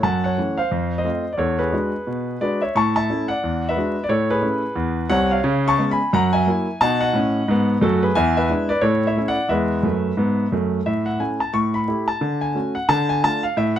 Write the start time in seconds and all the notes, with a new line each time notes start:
0.03 F#2 F#5 A5
0.24 C#5 F#5
0.38 E3 A3 C#4
0.57 C5 F5
0.71 F2
0.98 C5 D#5
1.05 A3 C4 F4
1.33 D5
1.38 E2 A4 C#5
1.59 G#4 B4
1.72 G#3 D4 F#4
2.07 B2
2.41 G#3 D4 F#4 B4 D5
2.62 C#5 E5
2.75 A2 A5 C#6
2.96 E5 A5
3.10 A3 C#4 E4
3.28 D5 F#5
3.43 E2
3.69 B4 E5
3.76 G#3 D4 F#4
4.04 D5
4.09 A2 A4 C#5
4.30 G#4 B4
4.42 A3 C#4 E4
4.76 E2
5.10 C2 C3 C#5 F#5
5.31 C#5 F5
5.44 C#3
5.68 A5 C#6
5.78 G#3 B3 C#4
5.91 G#5 B5
6.13 F#2 F#5 A#5
6.33 E5 G#5
6.47 F#3 A#3 E4
6.81 B2 D#4 F#5 A5
7.01 D#5 F#5
7.13 A2 C#4
7.48 G#2 B3
7.81 F#2 A3 F#4 A4
8.03 G#4 B4
8.15 E2 E5 G#5
8.37 B4 E5
8.49 G#3 D4 E4
8.69 B4 D5
8.81 A2 A4 C#5
9.07 C#5 E5
9.16 A3 C#4 E4
9.28 D5 F#5
9.49 E2 G#3 B4 E5
9.83 F#2 A3
10.17 G#2 B3
10.52 F#2 A3
10.86 A2 E5
11.06 F#5
11.19 A3 C#4 E4 G#5
11.40 A5
11.53 A2 C#6
11.74 B5
11.88 A3 E4 G4
12.08 A5
12.21 D3
12.41 G#5
12.55 A3 C#4 F#4
12.75 F#5
12.89 D3 A5
13.09 G#5
13.24 A3 D4 F4 A5
13.43 F5
13.57 A2 E5